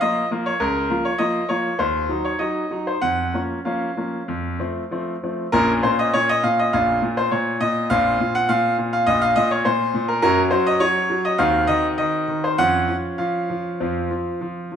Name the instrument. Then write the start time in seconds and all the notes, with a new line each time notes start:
grand piano
0.01 F3 A#3 F4 D#5
0.31 F3 A#3 F4
0.46 C#5
0.60 C#2 A#4
0.90 F3 A#3 F4
1.05 C#5
1.18 F3 A#3 F4 D#5
1.49 F3 A#3 F4 C#5
1.79 D#2 C5
2.09 F#3 D#4
2.25 C#5
2.39 F#3 D#4 D#5
2.71 F#3 D#4
2.87 C5
3.01 F2 F#5
3.34 F3 A#3 C#4
3.65 F3 A#3 C#4 F5
3.97 F3 A#3 C#4
4.28 F2
4.59 F3 A3 C4
4.91 F3 A3 C4
5.23 F3 A3 C4
5.52 A#1 A#2 A#3 C#4 A#4
5.83 A#2 C5
5.99 D#5
6.13 A#2 C#5
6.29 D#5
6.44 A#2 F5
6.59 D#5
6.73 A#1 A#2 F5
7.02 A#2
7.17 C5
7.31 A#2 C#5
7.61 A#2 D#5
7.90 A#1 A#2 C4 F4 F5
8.20 A#2
8.35 F#5
8.49 A#2 F5
8.78 A#2
8.93 F5
9.07 A#1 A#2 D#5
9.22 F5
9.36 A#2 D#5
9.51 C#5
9.65 A#2 C5
9.94 A#2
10.08 A#4
10.22 F#2 F#3 C#4 F#4 A#4
10.51 F#3 C5
10.67 D#5
10.80 F#3 C#5
11.10 F#3
11.25 D#5
11.38 D#2 D#3 C4 F#4 F5
11.67 D#3 D#5
11.98 D#3 D#5
12.28 D#3
12.44 C5
12.58 F2 F3 C#4 F4 F#5
12.89 F3
13.18 F3 F5
13.50 F3
13.80 F2 F3 C4 F4
14.11 F3
14.41 F3
14.72 F3